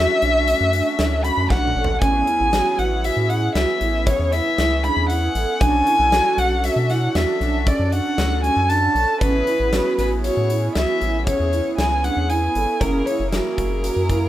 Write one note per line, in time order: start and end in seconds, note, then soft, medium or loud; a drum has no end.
0.00 1.97 A3 medium
0.00 1.98 C#4 medium
0.00 1.98 D4 medium
0.00 0.15 F#4 medium
0.00 1.99 F#4 medium
0.00 1.26 E5 medium
0.22 0.55 B1 medium
0.22 0.40 D4 medium
0.22 closed hi-hat medium
0.48 0.66 C#4 medium
0.48 closed hi-hat medium
0.61 0.82 F#2 medium
0.73 1.09 D4 medium
0.73 closed hi-hat medium
0.99 1.31 D2 medium
0.99 snare loud
0.99 closed hi-hat medium
1.24 1.43 C#4 medium
1.24 1.51 B5 medium
1.24 closed hi-hat medium
1.37 1.48 F#2 medium
1.50 1.73 B1 medium
1.50 1.69 D4 medium
1.50 2.01 F#5 medium
1.50 kick medium
1.50 snare medium
1.67 mid tom medium
1.76 1.99 A1 medium
1.76 1.94 A4 medium
1.84 floor tom medium
2.00 2.23 A1 medium
2.00 5.56 B3 medium
2.00 5.57 C#4 medium
2.00 2.20 C#4 medium
2.00 5.57 E4 medium
2.00 5.58 G#4 medium
2.00 2.81 G#5 loud
2.00 kick loud
2.00 closed hi-hat medium
2.27 2.45 E4 medium
2.27 closed hi-hat medium
2.40 2.62 A1 medium
2.53 2.89 F#4 medium
2.53 snare loud
2.53 closed hi-hat medium
2.79 3.11 A1 medium
2.79 3.06 F#5 medium
2.79 closed hi-hat soft
3.04 3.22 F#4 medium
3.04 3.31 E5 medium
3.04 closed hi-hat medium
3.17 3.49 A2 medium
3.29 3.48 E4 medium
3.29 3.54 F#5 medium
3.29 closed hi-hat medium
3.55 3.66 C#2 medium
3.55 3.73 F#4 medium
3.55 4.08 E5 medium
3.55 snare loud
3.55 closed hi-hat medium
3.81 4.13 A1 medium
3.81 3.99 E4 medium
3.81 closed hi-hat medium
4.07 4.25 C#4 medium
4.07 4.34 C#5 medium
4.07 kick loud
4.07 closed hi-hat medium
4.19 4.41 E2 medium
4.32 4.68 E4 medium
4.32 4.85 E5 medium
4.32 snare soft
4.32 closed hi-hat medium
4.58 4.91 C#2 medium
4.58 snare loud
4.58 closed hi-hat medium
4.84 5.02 D4 medium
4.84 5.08 B5 medium
4.84 closed hi-hat medium
4.97 5.29 E2 medium
5.09 5.28 E4 medium
5.09 5.62 F#5 medium
5.09 closed hi-hat medium
5.35 5.46 A1 medium
5.35 5.53 A4 medium
5.35 closed hi-hat medium
5.59 5.83 B1 medium
5.59 9.16 C#4 medium
5.59 9.16 D4 medium
5.59 5.79 D4 medium
5.59 9.17 F#4 medium
5.59 9.18 A4 medium
5.59 6.40 G#5 loud
5.59 kick loud
5.59 closed hi-hat medium
5.87 6.05 E4 medium
5.87 closed hi-hat medium
5.99 6.21 B1 medium
6.12 6.48 F#4 medium
6.12 snare loud
6.12 closed hi-hat medium
6.38 6.70 B1 medium
6.38 6.66 F#5 medium
6.38 closed hi-hat medium
6.64 6.82 F#4 medium
6.64 6.92 E5 medium
6.64 closed hi-hat medium
6.76 7.09 B2 medium
6.90 7.08 E4 medium
6.90 7.17 F#5 medium
6.90 snare soft
6.90 closed hi-hat medium
7.15 7.26 E2 medium
7.15 7.69 E5 medium
7.15 snare loud
7.15 closed hi-hat medium
7.41 7.73 B1 medium
7.41 7.59 D4 medium
7.41 snare soft
7.41 closed hi-hat soft
7.67 7.85 C#4 medium
7.67 7.94 D5 medium
7.67 kick loud
7.67 closed hi-hat medium
7.80 8.01 F#2 medium
7.92 8.28 D4 medium
7.92 8.43 F#5 medium
7.92 closed hi-hat medium
8.18 8.50 D2 medium
8.18 snare loud
8.18 closed hi-hat medium
8.44 8.62 C#4 medium
8.44 8.70 G#5 medium
8.44 closed hi-hat medium
8.57 8.89 F#2 medium
8.69 8.88 D4 medium
8.69 9.21 A5 medium
8.69 closed hi-hat medium
8.95 9.06 B1 medium
8.95 9.14 A4 medium
8.95 closed hi-hat medium
9.20 9.43 A1 medium
9.20 12.76 B3 medium
9.20 12.77 C#4 medium
9.20 9.39 C#4 medium
9.20 12.78 E4 medium
9.20 12.78 G#4 medium
9.20 9.94 B4 loud
9.20 kick loud
9.20 closed hi-hat medium
9.47 9.65 E4 medium
9.47 closed hi-hat medium
9.60 9.81 A1 medium
9.73 10.08 F#4 medium
9.73 snare loud
9.73 closed hi-hat medium
9.98 10.31 A1 medium
9.98 10.10 B4 medium
9.98 snare soft
9.98 closed hi-hat medium
10.24 10.42 F#4 medium
10.24 10.72 C#5 medium
10.24 closed hi-hat medium
10.37 10.69 A2 medium
10.50 10.68 E4 medium
10.50 closed hi-hat medium
10.75 10.86 C#2 medium
10.75 10.93 F#4 medium
10.75 11.23 E5 medium
10.75 snare loud
10.75 closed hi-hat medium
11.01 11.34 A1 medium
11.01 closed hi-hat medium
11.27 11.45 C#4 medium
11.27 11.75 C#5 medium
11.27 kick loud
11.27 closed hi-hat medium
11.40 11.61 E2 medium
11.53 11.89 E4 medium
11.53 closed hi-hat medium
11.78 12.10 C#2 medium
11.78 12.06 G#5 medium
11.78 snare loud
11.78 closed hi-hat medium
12.04 12.22 D4 medium
12.04 12.31 F#5 medium
12.04 closed hi-hat medium
12.17 12.49 E2 medium
12.30 12.48 E4 medium
12.30 12.82 G#5 medium
12.30 closed hi-hat medium
12.55 12.66 G#1 medium
12.55 12.73 A4 medium
12.55 closed hi-hat medium
12.79 13.02 F#1 medium
12.79 14.29 A#3 medium
12.79 14.29 C#4 medium
12.79 12.99 C#4 medium
12.79 14.29 E4 medium
12.79 14.29 G#4 medium
12.79 13.08 A#4 medium
12.79 kick loud
12.79 closed hi-hat medium
13.06 13.25 E4 medium
13.06 13.31 C#5 medium
13.06 closed hi-hat medium
13.20 13.41 F#1 medium
13.32 13.68 F#4 medium
13.32 14.29 A#4 medium
13.32 snare loud
13.32 closed hi-hat medium
13.58 13.90 F#1 medium
13.58 kick medium
13.58 closed hi-hat medium
13.83 14.01 F#4 medium
13.83 closed hi-hat medium
13.96 14.29 F#2 medium
14.09 14.27 E4 medium
14.09 kick medium
14.09 closed hi-hat medium